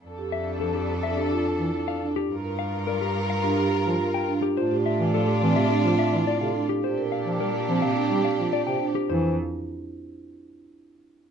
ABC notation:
X:1
M:4/4
L:1/16
Q:1/4=106
K:F
V:1 name="Clean electric guitar"
z2 e z A G z e G z4 f z G | z2 f z B G z f G z4 g z G | c z e z A G z e G z e z d f z G | c z f z B G z f G z f z d g z G |
c2 z12 z2 |]
V:2 name="Violin section"
[DA]12- [DA]3 z | [FB]12- [FB]3 z | [Fd]12- [Fd]3 z | [Gd]12- [Gd]3 z |
z16 |]
V:3 name="Soprano saxophone"
A12- A3 z | B12- B3 z | D12- D3 z | D12- D3 z |
z16 |]
V:4 name="Marimba"
z G z6 D F z E z2 D z | z B z6 D G z F z2 D z | F G z4 C z D F z E z A D z | G B z4 C z D G z F z c D z |
E2 z12 z2 |]
V:5 name="Bass clarinet" clef=bass
z4 F, z6 E, z4 | z4 G, z6 F, z4 | z3 E, F, z E, C, z F, z E, z C, z2 | z3 F, G, z F, C, z G, z F, z C, z2 |
E,2 z12 z2 |]
V:6 name="Cello" clef=bass
F,,16 | G,,16 | A,,16 | B,,16 |
F,,2 z12 z2 |]